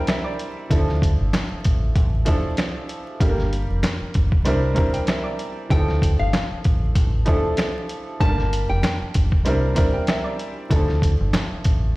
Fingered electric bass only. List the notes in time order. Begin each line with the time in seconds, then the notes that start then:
0.71 D2
1.20 G1
1.52 muted fingered electric bass stroke
1.66 A1
1.96 A1
3.21 G1
3.70 F1
4.02 muted fingered electric bass stroke
4.16 G1
4.46 C2
5.71 D2
6.20 G1
6.51 muted fingered electric bass stroke
6.66 A1
6.96 A1
8.21 G1
8.70 F1
9.02 muted fingered electric bass stroke
9.16 G1
9.46 C2
10.71 D2
11.21 G1
11.52 muted fingered electric bass stroke
11.66 A1